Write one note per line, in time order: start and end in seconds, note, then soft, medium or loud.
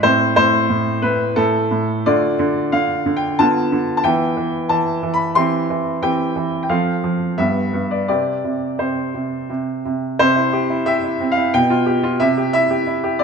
0.03 0.35 A2 medium
0.03 2.02 C4 soft
0.03 2.02 E4 soft
0.03 0.35 C5 medium
0.36 0.68 A2 medium
0.36 1.03 C5 medium
0.69 1.02 A2 soft
1.02 1.35 A2 soft
1.02 1.36 B4 medium
1.36 1.70 A2 soft
1.36 2.06 A4 medium
1.71 2.05 A2 soft
2.06 2.38 D3 medium
2.06 3.35 A3 soft
2.06 3.35 F4 soft
2.06 2.73 D5 medium
2.39 2.71 D3 medium
2.72 3.04 D3 soft
2.72 3.16 F5 medium
3.06 3.38 D3 soft
3.16 3.38 G5 medium
3.39 3.71 D3 medium
3.39 4.01 B3 soft
3.39 4.01 F4 soft
3.39 3.96 A5 medium
3.72 4.04 D3 soft
3.97 4.04 A5 medium
4.04 4.35 E3 medium
4.04 5.32 B3 soft
4.04 5.32 E4 soft
4.04 4.70 G5 medium
4.37 4.69 E3 soft
4.69 5.01 E3 soft
4.69 5.14 A5 medium
5.03 5.34 E3 soft
5.14 5.36 B5 medium
5.35 5.68 E3 medium
5.35 5.98 C4 soft
5.35 5.98 G4 soft
5.35 6.02 C6 medium
5.70 6.01 E3 soft
6.02 6.34 E3 soft
6.02 6.66 C4 soft
6.02 6.66 G4 soft
6.02 6.61 G5 medium
6.36 6.68 E3 soft
6.63 6.70 G5 soft
6.69 7.02 F3 soft
6.69 7.34 C4 soft
6.69 7.34 A4 soft
6.69 7.38 F5 soft
7.04 7.37 F3 soft
7.38 7.72 G2 soft
7.38 8.04 B3 soft
7.38 8.04 G4 soft
7.38 7.90 E5 medium
7.73 8.07 G2 soft
7.91 8.07 D5 soft
8.08 8.43 C3 soft
8.08 10.15 C4 soft
8.08 10.15 G4 soft
8.08 8.79 D5 medium
8.44 8.78 C3 soft
8.79 9.13 C3 soft
8.79 9.84 C5 soft
9.14 9.48 C3 soft
9.50 9.84 C3 soft
9.85 10.18 C3 soft
10.19 11.50 C3 medium
10.19 10.87 C5 medium
10.36 10.63 E4 soft
10.53 10.80 G4 soft
10.70 10.97 E4 soft
10.86 11.13 G4 soft
10.86 11.31 E5 medium
11.04 11.31 E4 soft
11.21 11.47 C4 soft
11.32 11.54 F5 medium
11.37 11.54 E4 soft
11.54 12.18 B2 medium
11.54 12.20 G5 medium
11.70 11.97 F4 soft
11.86 12.13 G4 medium
12.03 12.20 F4 soft
12.20 13.24 C3 medium
12.20 12.52 E5 medium
12.37 12.64 G4 soft
12.53 12.80 E4 soft
12.53 13.20 E5 medium
12.70 12.97 G4 soft
12.87 13.13 E4 soft
13.04 13.24 G4 soft
13.19 13.24 C4 soft
13.19 13.24 D5 medium